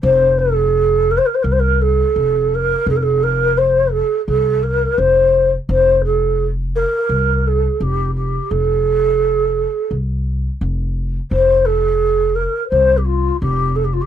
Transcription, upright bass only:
\new Staff \with { instrumentName = "Upright bass" } { \clef bass \time 4/4 \tempo 4 = 85 f,,2 c,4 f,,4 | f,,2 c,4 f,,4 | f,,2 c,4 f,,4 | f,,2 c,4 f,,4 |
f,,2 c,4 f,,4 | }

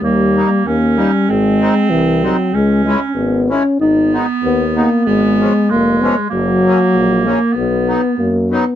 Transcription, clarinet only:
\new Staff \with { instrumentName = "Clarinet" } { \time 2/4 \key cis \dorian \tempo 4 = 96 ais4 cis'4 | bis2 | cis'4. r8 | b2 |
b4 gis4 | ais2 | b4. r8 | }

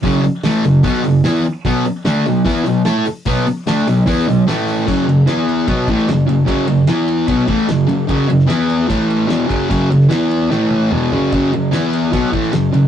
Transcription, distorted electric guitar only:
\new Staff \with { instrumentName = "Distorted electric guitar" } { \clef bass \time 4/4 \key b \lydian \tempo 4 = 149 <fis, cis fis>8 r8 <a, e a>8 <fis, cis>8 <b, fis b>8 <fis, cis>8 <e b e'>8 r8 | <b, fis b>8 r8 <d a d'>8 <b, fis>8 <e b e'>8 <b, fis>8 <a e' a'>8 r8 | <b, fis b>8 r8 <d a d'>8 <b, fis>8 <e b e'>8 <b, fis>8 <a, e a>4 | <fis, cis fis>8 <fis, cis>8 <e b e'>4 <b, fis b>8 <a, e a>8 <fis, cis>8 <fis, cis>8 |
<fis, cis fis>8 <fis, cis>8 <e b e'>4 <b, fis b>8 <a, e a>8 <fis, cis>8 <fis, cis>8 | <fis, cis fis>8 <fis, cis>8 <e b e'>4 <a, e a>4 <e, b, e>8 <fis, cis fis>8 | <fis, cis fis>8 <fis, cis>8 <e b e'>4 <a, e a>4 <e, b, e>8 <fis, cis fis>8 | <fis, cis fis>8 <fis, cis>8 <e b e'>4 <b, fis b>8 <a, e a>8 <fis, cis>8 <fis, cis>8 | }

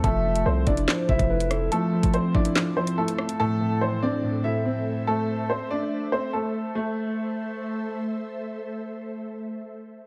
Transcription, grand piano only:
\new Staff \with { instrumentName = "Grand piano" } { \clef bass \time 4/4 \key a \minor \tempo 4 = 143 f8 f8 a8 e'8 f8 f8 e'4 | f8 f8 a8 e'8 f8 f8 e'4 | a,8 a,8 e8 c'8 a,8 a,8 c'4~ | c'4. r2 r8 |
r1 | r1 | }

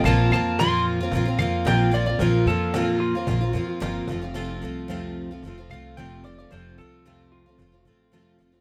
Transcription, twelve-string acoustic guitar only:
\new Staff \with { instrumentName = "Twelve-string acoustic guitar" } { \time 4/4 \key f \major \tempo 4 = 111 <bes, f bes c' f'>8 <f bes c' f'>8 <bes, f bes c' f'>8. <bes c' f'>16 <f bes c' f'>16 <bes c' f'>16 <f bes c' f'>8 <bes, f bes c' f'>8 <f bes c' f'>16 <bes c' f'>16 | <bes, f bes c' f'>8 <f bes c' f'>8 <bes, f bes c' f'>8. <bes c' f'>16 <f bes c' f'>16 <bes c' f'>16 <f bes c' f'>8 <bes, f bes c' f'>8 <f a c' f'>16 <f a c' f'>16 | <f, c f a c' f'>8 <f a c' f'>8 <f, c f a c' f'>8. <f a c' f'>16 <f a c' f'>16 <f a c' f'>16 <f a c' f'>8 <f, c f a c' f'>8 <f a c' f'>16 <f a c' f'>16 | <f, c f a c' f'>8 <f a c' f'>8 <f, c f a c' f'>8. <f a c' f'>16 <f a c' f'>16 <f a c' f'>16 <f a c' f'>8 <f, c f a c' f'>8 <f a c' f'>16 <f a c' f'>16 | }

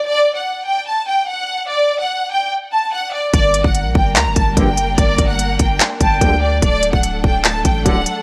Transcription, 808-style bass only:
\new Staff \with { instrumentName = "808-style bass" } { \clef bass \time 4/4 \key g \minor \tempo 4 = 146 r1 | r1 | g,,8. g,,8 bes,,16 g,,8 d,16 g,,16 g,,8 g,,8 fis,,8 | g,,8 g,,4 g,,8 r8 g,,8 d,4 |
d,,8. d,,8. d,,4 a,,8 d,,8 r8 | }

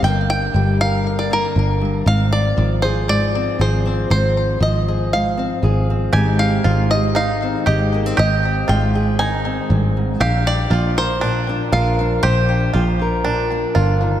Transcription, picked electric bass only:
\new Staff \with { instrumentName = "Picked electric bass" } { \clef bass \time 4/4 \key f \dorian \tempo 4 = 118 g,,4 g,,2 g,,4 | aes,,4 aes,,2 aes,,4 | aes,,4 aes,,2 aes,,4 | aes,,4 aes,,2 aes,,4 |
aes,,4 aes,,2 aes,,4 | bes,,4 bes,,2 bes,,4 | bes,,4 bes,,2 g,,4 | }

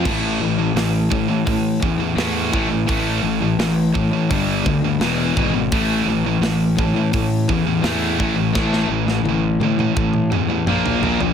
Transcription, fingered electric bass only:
\new Staff \with { instrumentName = "Fingered electric bass" } { \clef bass \time 4/4 \key g \mixolydian \tempo 4 = 85 a,,8 a,,8 a,,8 a,8 a,8 e,8 e,8 a,,8 | a,,8 a,,8 a,,8 a,8 g,,8 d,8 e,,8 gis,,8 | a,,8 a,,8 a,,8 a,8 a,8 e,8 e,8 a,,8 | a,,8 a,,8 a,,8 a,8 a,8 e,8 bes,,8 bes,,8 | }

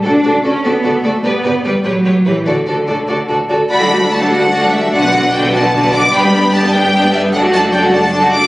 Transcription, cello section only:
\new Staff \with { instrumentName = "Cello section" } { \clef bass \time 6/8 \key d \major \tempo 4. = 99 d'4 cis'8 b4 a8 | b4 g8 fis4 e8 | d2~ d8 r8 | d,2. |
b,2. | g,2. | fis,2. | }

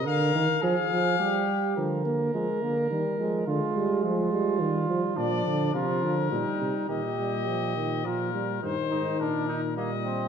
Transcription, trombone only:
\new Staff \with { instrumentName = "Trombone" } { \clef bass \time 3/4 \key ees \major \tempo 4 = 105 r2. | f8 bes8 aes8 bes8 g8 aes8 | aes2 g4 | f4 f4 g4 |
ees8 g8 f8 ees8 f8 g8 | ees2 g4 | }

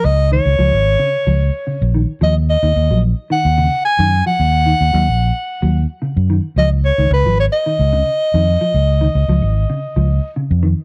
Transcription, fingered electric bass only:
\new Staff \with { instrumentName = "Fingered electric bass" } { \clef bass \time 4/4 \key des \mixolydian \tempo 4 = 110 des,8. des,16 des,16 aes,,8 r8 des,8 r8 bes,,8 r16 | ees,8. ees,16 ees,16 bes,,8 r8 ees,8 r8 ges,8 r16 | ees,8. ees,16 ees,16 bes,,8 r8 ees,8 r8 ges,8 r16 | des,8. des,16 des,16 aes,,8 r8 des,8 r8 f,8 r16 |
des,8. des,16 des,16 aes,,8 r8 des,8 r8 f,8 r16 | }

